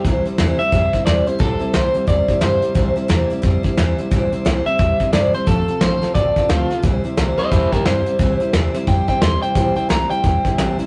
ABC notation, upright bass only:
X:1
M:4/4
L:1/8
Q:"Swing" 1/4=176
K:C
V:1 name="Upright bass" clef=bass
C,, z E,, z F,, z E,, z | A,,, z C,, z E,, z G,, z | C,, z E,, z F,, z E,, z | A,,, z C,, z E,, z G,, z |
F,,, z A,,, z A,,, z D,, z | C,, z C,, z E,, z G,, z | C,, z E,, z F,, z E,, z | A,,, z C,, z E,, z A,,, z |]